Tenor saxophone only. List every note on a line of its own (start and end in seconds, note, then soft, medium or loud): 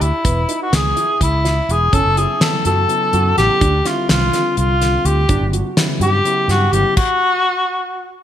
0.02 0.61 E4 medium
0.62 0.76 F#4 medium
0.75 1.22 G#4 medium
1.22 1.73 E4 medium
1.71 1.95 G#4 medium
1.94 2.19 A4 medium
2.17 2.43 G#4 medium
2.42 2.65 A4 medium
2.66 3.34 A4 medium
3.38 3.88 G4 medium
3.87 4.10 F4 medium
4.10 4.55 F4 medium
4.58 5.07 F4 medium
5.06 5.54 G4 medium
6.02 6.46 G4 medium
6.50 6.74 F#4 medium
6.72 6.96 G4 medium
6.96 8.12 F#4 medium